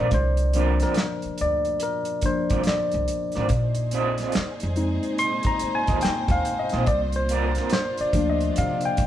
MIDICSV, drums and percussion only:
0, 0, Header, 1, 2, 480
1, 0, Start_track
1, 0, Key_signature, -3, "minor"
1, 0, Tempo, 845070
1, 66, Time_signature, 4, 2, 24, 8
1, 5151, End_track
2, 0, Start_track
2, 0, Title_t, "Drums"
2, 63, Note_on_c, 9, 42, 62
2, 67, Note_on_c, 9, 36, 94
2, 120, Note_off_c, 9, 42, 0
2, 124, Note_off_c, 9, 36, 0
2, 211, Note_on_c, 9, 42, 45
2, 268, Note_off_c, 9, 42, 0
2, 303, Note_on_c, 9, 42, 68
2, 360, Note_off_c, 9, 42, 0
2, 452, Note_on_c, 9, 42, 51
2, 464, Note_on_c, 9, 38, 37
2, 509, Note_off_c, 9, 42, 0
2, 520, Note_off_c, 9, 38, 0
2, 536, Note_on_c, 9, 42, 64
2, 553, Note_on_c, 9, 38, 101
2, 559, Note_on_c, 9, 39, 79
2, 592, Note_off_c, 9, 42, 0
2, 610, Note_off_c, 9, 38, 0
2, 615, Note_off_c, 9, 39, 0
2, 694, Note_on_c, 9, 42, 43
2, 751, Note_off_c, 9, 42, 0
2, 782, Note_on_c, 9, 42, 58
2, 839, Note_off_c, 9, 42, 0
2, 936, Note_on_c, 9, 42, 38
2, 992, Note_off_c, 9, 42, 0
2, 1020, Note_on_c, 9, 42, 78
2, 1077, Note_off_c, 9, 42, 0
2, 1164, Note_on_c, 9, 42, 55
2, 1221, Note_off_c, 9, 42, 0
2, 1258, Note_on_c, 9, 42, 67
2, 1264, Note_on_c, 9, 36, 82
2, 1315, Note_off_c, 9, 42, 0
2, 1321, Note_off_c, 9, 36, 0
2, 1418, Note_on_c, 9, 42, 49
2, 1423, Note_on_c, 9, 36, 89
2, 1475, Note_off_c, 9, 42, 0
2, 1480, Note_off_c, 9, 36, 0
2, 1497, Note_on_c, 9, 42, 70
2, 1517, Note_on_c, 9, 38, 93
2, 1522, Note_on_c, 9, 39, 76
2, 1553, Note_off_c, 9, 42, 0
2, 1573, Note_off_c, 9, 38, 0
2, 1579, Note_off_c, 9, 39, 0
2, 1655, Note_on_c, 9, 42, 41
2, 1712, Note_off_c, 9, 42, 0
2, 1748, Note_on_c, 9, 42, 65
2, 1805, Note_off_c, 9, 42, 0
2, 1884, Note_on_c, 9, 42, 40
2, 1900, Note_on_c, 9, 38, 32
2, 1941, Note_off_c, 9, 42, 0
2, 1957, Note_off_c, 9, 38, 0
2, 1981, Note_on_c, 9, 42, 66
2, 1987, Note_on_c, 9, 36, 94
2, 2038, Note_off_c, 9, 42, 0
2, 2044, Note_off_c, 9, 36, 0
2, 2128, Note_on_c, 9, 42, 49
2, 2184, Note_off_c, 9, 42, 0
2, 2222, Note_on_c, 9, 42, 68
2, 2279, Note_off_c, 9, 42, 0
2, 2372, Note_on_c, 9, 42, 48
2, 2384, Note_on_c, 9, 38, 34
2, 2429, Note_off_c, 9, 42, 0
2, 2440, Note_off_c, 9, 38, 0
2, 2454, Note_on_c, 9, 42, 73
2, 2472, Note_on_c, 9, 38, 106
2, 2477, Note_on_c, 9, 39, 92
2, 2511, Note_off_c, 9, 42, 0
2, 2528, Note_off_c, 9, 38, 0
2, 2534, Note_off_c, 9, 39, 0
2, 2612, Note_on_c, 9, 42, 45
2, 2669, Note_off_c, 9, 42, 0
2, 2703, Note_on_c, 9, 42, 54
2, 2760, Note_off_c, 9, 42, 0
2, 2856, Note_on_c, 9, 42, 37
2, 2913, Note_off_c, 9, 42, 0
2, 2944, Note_on_c, 9, 42, 73
2, 3001, Note_off_c, 9, 42, 0
2, 3083, Note_on_c, 9, 42, 56
2, 3095, Note_on_c, 9, 36, 88
2, 3140, Note_off_c, 9, 42, 0
2, 3152, Note_off_c, 9, 36, 0
2, 3177, Note_on_c, 9, 42, 65
2, 3234, Note_off_c, 9, 42, 0
2, 3336, Note_on_c, 9, 42, 45
2, 3341, Note_on_c, 9, 36, 85
2, 3393, Note_off_c, 9, 42, 0
2, 3398, Note_off_c, 9, 36, 0
2, 3414, Note_on_c, 9, 42, 77
2, 3434, Note_on_c, 9, 38, 98
2, 3439, Note_on_c, 9, 39, 78
2, 3471, Note_off_c, 9, 42, 0
2, 3491, Note_off_c, 9, 38, 0
2, 3496, Note_off_c, 9, 39, 0
2, 3569, Note_on_c, 9, 36, 87
2, 3570, Note_on_c, 9, 42, 40
2, 3626, Note_off_c, 9, 36, 0
2, 3627, Note_off_c, 9, 42, 0
2, 3663, Note_on_c, 9, 42, 63
2, 3720, Note_off_c, 9, 42, 0
2, 3802, Note_on_c, 9, 42, 47
2, 3818, Note_on_c, 9, 38, 31
2, 3859, Note_off_c, 9, 42, 0
2, 3875, Note_off_c, 9, 38, 0
2, 3899, Note_on_c, 9, 42, 66
2, 3904, Note_on_c, 9, 36, 99
2, 3956, Note_off_c, 9, 42, 0
2, 3961, Note_off_c, 9, 36, 0
2, 4047, Note_on_c, 9, 42, 46
2, 4103, Note_off_c, 9, 42, 0
2, 4140, Note_on_c, 9, 42, 66
2, 4197, Note_off_c, 9, 42, 0
2, 4287, Note_on_c, 9, 42, 51
2, 4298, Note_on_c, 9, 38, 37
2, 4344, Note_off_c, 9, 42, 0
2, 4355, Note_off_c, 9, 38, 0
2, 4371, Note_on_c, 9, 42, 68
2, 4388, Note_on_c, 9, 38, 109
2, 4393, Note_on_c, 9, 39, 81
2, 4427, Note_off_c, 9, 42, 0
2, 4445, Note_off_c, 9, 38, 0
2, 4450, Note_off_c, 9, 39, 0
2, 4530, Note_on_c, 9, 42, 48
2, 4586, Note_off_c, 9, 42, 0
2, 4619, Note_on_c, 9, 36, 82
2, 4619, Note_on_c, 9, 42, 56
2, 4676, Note_off_c, 9, 36, 0
2, 4676, Note_off_c, 9, 42, 0
2, 4774, Note_on_c, 9, 42, 42
2, 4831, Note_off_c, 9, 42, 0
2, 4861, Note_on_c, 9, 42, 84
2, 4918, Note_off_c, 9, 42, 0
2, 5002, Note_on_c, 9, 42, 60
2, 5059, Note_off_c, 9, 42, 0
2, 5096, Note_on_c, 9, 42, 64
2, 5102, Note_on_c, 9, 36, 91
2, 5151, Note_off_c, 9, 36, 0
2, 5151, Note_off_c, 9, 42, 0
2, 5151, End_track
0, 0, End_of_file